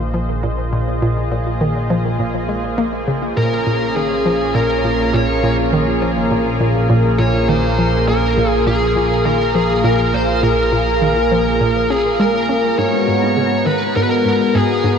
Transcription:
Already playing: analog synth bass A#1, analog synth pad A#3 F4 G#4 C5 D#5
0.14 synth arpeggio sound F3
0.43 synth arpeggio sound A#2
0.73 synth arpeggio sound A#2
1.02 synth arpeggio sound A#2
1.31 synth arpeggio sound A#2
1.61 synth arpeggio sound D#3
1.90 synth arpeggio sound F3
2.19 synth arpeggio sound A#2
2.49 synth arpeggio sound G#3
2.78 synth arpeggio sound A#3
3.08 synth arpeggio sound C#3
3.37 synth arpeggio sound A#2, analog synth pad C#4 A#4, lead electric guitar A#4
3.67 synth arpeggio sound A#2
3.96 synth arpeggio sound D#3, lead electric guitar G#4
4.26 synth arpeggio sound F3
4.55 synth arpeggio sound A#2, lead electric guitar A#4
4.84 synth arpeggio sound A#2
5.14 synth arpeggio sound A#2, lead electric guitar C#5
5.43 synth arpeggio sound A#2
5.73 synth arpeggio sound D#3
6.02 synth arpeggio sound F3
6.31 synth arpeggio sound A#2
6.61 synth arpeggio sound A#2
6.90 synth arpeggio sound A#2
7.19 synth arpeggio sound A#2, lead electric guitar C#5
7.49 synth arpeggio sound D#3, lead electric guitar C5
7.78 synth arpeggio sound F3
8.07 synth arpeggio sound A#2, lead electric guitar A#4, analog synth pad F5
8.37 synth arpeggio sound A#2
8.50 lead electric guitar G#4
8.67 synth arpeggio sound A#2, lead electric guitar G#4
8.96 synth arpeggio sound A#2
9.25 synth arpeggio sound D#3, lead electric guitar A#4
9.55 synth arpeggio sound F3, lead electric guitar G#4
9.84 synth arpeggio sound A#2, lead electric guitar A#4
10.14 synth arpeggio sound A#2, lead electric guitar C5
10.43 synth arpeggio sound A#2, lead electric guitar A#4
10.72 synth arpeggio sound A#2
11.02 synth arpeggio sound D#3
11.31 synth arpeggio sound F3
11.61 synth arpeggio sound A#2
11.90 synth arpeggio sound C#4, lead electric guitar G#4
12.20 synth arpeggio sound G#3, lead electric guitar A#4
12.49 synth arpeggio sound C#4
12.78 analog synth pad G#2 G#3 B3 F#4 A#5, synth arpeggio sound G#2, lead electric guitar C#5
13.08 synth arpeggio sound G#2
13.37 synth arpeggio sound C#3
13.66 synth arpeggio sound D#3, lead electric guitar B4
13.96 synth arpeggio sound G#2, lead electric guitar A#4
14.03 lead electric guitar B4
14.10 lead electric guitar A#4
14.25 synth arpeggio sound G#2
14.55 synth arpeggio sound G#2, lead electric guitar G#4
14.84 synth arpeggio sound G#2

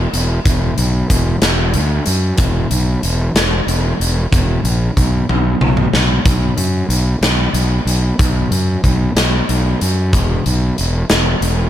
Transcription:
0.13 fingered electric bass E1, closed hi-hat
0.45 fingered electric bass E1, kick, closed hi-hat
0.78 fingered electric bass B1, closed hi-hat
1.10 fingered electric bass E1, kick, closed hi-hat
1.41 fingered electric bass E1, snare, closed hi-hat
1.74 fingered electric bass D2, closed hi-hat
2.06 fingered electric bass F#2, closed hi-hat
2.38 fingered electric bass E1, kick, closed hi-hat
2.70 fingered electric bass B1, closed hi-hat
3.03 fingered electric bass E1, closed hi-hat
3.34 fingered electric bass E1, snare, closed hi-hat
3.67 fingered electric bass E1, closed hi-hat
4.00 fingered electric bass E1, closed hi-hat
4.31 fingered electric bass E1, kick, closed hi-hat
4.64 fingered electric bass A#1, closed hi-hat
4.96 fingered electric bass B1, kick, closed hi-hat
5.29 fingered electric bass B1, high tom
5.61 fingered electric bass B1, mid tom
5.77 mid tom
5.93 fingered electric bass B1, snare
6.25 fingered electric bass B1, kick, closed hi-hat
6.57 fingered electric bass F#2, closed hi-hat
6.89 fingered electric bass B1, closed hi-hat
7.21 fingered electric bass B1, snare, closed hi-hat
7.53 fingered electric bass B1, closed hi-hat
7.85 fingered electric bass B1, closed hi-hat
8.19 fingered electric bass B1, kick, closed hi-hat
8.51 fingered electric bass F#2, closed hi-hat
8.83 fingered electric bass B1, kick, closed hi-hat
9.15 fingered electric bass B1, snare, closed hi-hat
9.49 fingered electric bass B1, closed hi-hat
9.81 fingered electric bass F#2, closed hi-hat
10.13 fingered electric bass E1, kick, closed hi-hat
10.46 fingered electric bass B1, closed hi-hat
10.78 fingered electric bass E1, closed hi-hat
11.10 fingered electric bass E1, snare, closed hi-hat
11.41 fingered electric bass E1, closed hi-hat

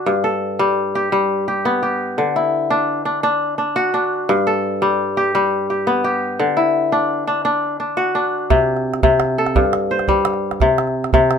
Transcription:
Already playing: kora D3 D4 F#4
0.06 kora G2
0.24 kora A4
0.59 kora G3
0.95 kora G4
1.12 kora G3
1.48 kora G4
1.65 kora B3
1.83 kora G4
2.18 kora D3
2.36 kora E4
2.70 kora D4
3.05 kora D4
3.23 kora D4
3.58 kora D4
3.76 kora F#4
3.94 kora D4
4.29 kora G2
4.47 kora A4
4.82 kora G3
5.17 kora G4
5.35 kora G3
5.70 kora G4
5.87 kora B3
6.04 kora G4
6.39 kora D3
6.57 kora E4
6.92 kora D4
7.27 kora D4
7.45 kora D4
7.80 kora D4
7.97 kora F#4
8.15 kora D4
8.50 kora C3, calabash thump, calabash click
8.77 calabash click
8.94 calabash click
9.03 kora C3, calabash thump
9.20 calabash click
9.38 kora A4
9.47 calabash click
9.55 kora G2, calabash thump
9.65 calabash click
9.73 calabash click
9.91 kora C5
9.99 calabash click
10.08 kora G3, calabash thump
10.25 calabash click
10.34 calabash click
10.51 calabash click
10.60 kora C3, calabash thump, calabash click
10.78 calabash click
10.87 calabash click
11.04 calabash click
11.13 kora C3, calabash thump
11.31 calabash click

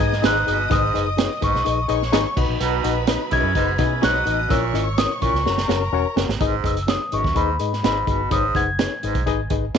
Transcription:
Already playing: violin section D#5 D#6, celesta G#6
0.00 fingered electric bass G#2, saxophone section B3 D#4 G#4, reed electric piano D#4 G#4 B4 D#5, kick
0.12 snare
0.22 fingered electric bass G#1, baritone saxophone G#2, reed electric piano D#4 G#4 B4 D#5, saxophone section D#4 G#4 B4, celesta F#6, snare, closed hi-hat
0.46 fingered electric bass G1, baritone saxophone B2, reed electric piano D#4 G#4 B4 D#5, closed hi-hat
0.70 fingered electric bass G#1, reed electric piano G#2 D#4 G#4 B4 D#5, baritone saxophone G#2, celesta D#6, kick, closed hi-hat
0.94 fingered electric bass F#1, reed electric piano D#4 G#4 B4 D#5, closed hi-hat
1.17 reed electric piano D#4 G#4 B4 C#5, snare, closed hi-hat
1.41 fingered electric bass G#1, baritone saxophone G#2, reed electric piano D#4 G#4 B4 D#5, celesta C#6, kick, closed hi-hat
1.54 fingered electric bass B1, snare
1.65 fingered electric bass A#1, reed electric piano D#4 G#4 B4 D#5, closed hi-hat
1.88 fingered electric bass A#1, reed electric piano D#4 G#4 B4 D#5, violin section C#5 C#6, closed hi-hat
2.02 snare
2.12 fingered electric bass G#1, reed electric piano D#4 G#4 B4 D#5, snare, closed hi-hat
2.37 fingered electric bass B1, reed electric piano B2 D#4 F#4 B4 D#5, violin section B4 B5, kick, crash
2.49 fingered electric bass A#1
2.60 fingered electric bass B1, baritone saxophone B2, saxophone section F#3 B3 D#4, closed hi-hat
2.84 fingered electric bass A#1, reed electric piano D#4 F#4 B4 D#5, closed hi-hat
3.07 saxophone section B3 D#4 F#4, reed electric piano D#4 F#4 B4 D#5, snare, closed hi-hat
3.31 fingered electric bass B1, baritone saxophone F#2, saxophone section C#4 E4 G#4, reed electric piano D#4 F#4 B4 D#5, celesta G#6, kick, closed hi-hat
3.43 fingered electric bass F#2
3.54 fingered electric bass F#1, baritone saxophone G#2, saxophone section B3 D#4 F#4, reed electric piano D#4 F#4 B4 D#5, kick, closed hi-hat
3.78 fingered electric bass B2, saxophone section C#4 E4 G#4, reed electric piano D#4 F#4 B4 D#5, kick, closed hi-hat
4.02 fingered electric bass B1, baritone saxophone G#2, reed electric piano D#4 F#4 B4 C#5, saxophone section D#4 F#4 B4, violin section D#5 D#6, celesta F#6, snare, closed hi-hat
4.25 fingered electric bass A1, baritone saxophone B2, reed electric piano D#4 F#4 B4 D#5, closed hi-hat
4.49 fingered electric bass A#1, reed electric piano A#2 C#4 E4 A#4 C#5, baritone saxophone A#2, violin section C#5 C#6, celesta E6, kick, closed hi-hat
4.73 fingered electric bass G#1, reed electric piano C#4 E4 A#4 D#5, closed hi-hat
4.98 reed electric piano C#4 E4 A#4 C#5, celesta D#6, snare, closed hi-hat
5.21 fingered electric bass A#1, baritone saxophone A#2, reed electric piano C#4 E4 A#4 C#5, celesta C#6, kick, closed hi-hat
5.34 fingered electric bass C#2, snare
5.45 fingered electric bass F#1, reed electric piano C#4 F#4 A#4 C#5, violin section A#4 A#5, snare
5.58 snare
5.68 fingered electric bass F#1, reed electric piano C#4 F#4 A#4 C#5, snare
5.92 fingered electric bass E1, reed electric piano C#4 F#4 A#4 C#5
6.16 fingered electric bass F#1, reed electric piano C#4 F#4 A#4 C#5, snare
6.29 fingered electric bass G#1, snare
6.41 fingered electric bass G#1, reed electric piano G#2 D#4 G#4 B4 D#5, baritone saxophone G#2, kick, closed hi-hat
6.64 fingered electric bass F#1, reed electric piano D#4 G#4 B4 D#5, celesta E6, kick, closed hi-hat
6.77 closed hi-hat
6.83 celesta E6
6.87 reed electric piano D#4 G#4 B4 C#5, celesta D#6, snare, closed hi-hat
7.12 fingered electric bass G#1, baritone saxophone F#2, reed electric piano D#4 G#4 B4 D#5, celesta C#6, closed hi-hat
7.24 fingered electric bass D#2, kick, snare
7.35 fingered electric bass D#2, baritone saxophone G#2, reed electric piano D#4 G#4 B4 D#5, celesta B5, kick, closed hi-hat
7.59 fingered electric bass G#2, reed electric piano D#4 G#4 B4 D#5, closed hi-hat
7.73 snare
7.83 fingered electric bass G#1, baritone saxophone G#2, reed electric piano D#4 G#4 B4 D#5, celesta B5, snare, closed hi-hat
8.07 fingered electric bass G1, baritone saxophone B2, reed electric piano D#4 G#4 B4 D#5, kick, closed hi-hat
8.31 fingered electric bass G#1, reed electric piano G#2 D#4 G#4 B4 C#5, baritone saxophone G#2, celesta D#6, kick, closed hi-hat
8.55 fingered electric bass F#1, reed electric piano D#4 G#4 B4 F#5, celesta G#6, kick, closed hi-hat
8.79 reed electric piano D#4 G#4 B4 C#5, snare, closed hi-hat
9.03 fingered electric bass G#1, baritone saxophone G#2, reed electric piano D#4 G#4 B4 D#5, closed hi-hat
9.15 fingered electric bass B1, kick, closed hi-hat
9.26 fingered electric bass G#1, reed electric piano D#4 G#4 B4 D#5, kick, closed hi-hat
9.50 fingered electric bass G#1, reed electric piano D#4 G#4 B4 D#5, kick, closed hi-hat
9.74 fingered electric bass F#1, reed electric piano D#4 G#4 B4, snare, closed hi-hat

